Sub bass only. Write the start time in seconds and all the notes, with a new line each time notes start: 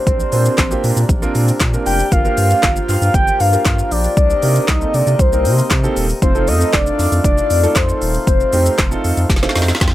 0.07 A#1
0.33 A#2
0.58 A#1
0.84 A#2
0.97 A#2
1.09 A#1
1.35 A#2
1.61 A#2
1.86 F1
2.12 G1
2.38 G2
2.63 G1
2.89 G2
3.02 G2
3.14 G1
3.40 G2
3.66 G2
3.91 A#1
4.17 C2
4.43 C3
4.69 C2
4.94 C3
5.07 C3
5.19 C2
5.45 C3
5.71 C3
5.97 D#1
6.22 F1
6.48 F2
6.74 F1
6.99 F2
7.12 F2
7.24 F1
7.50 F2
7.76 F2
8.02 D#1
8.27 F1
8.53 F2
8.79 F1
9.04 F2
9.17 F2
9.30 F1
9.56 F2
9.81 F2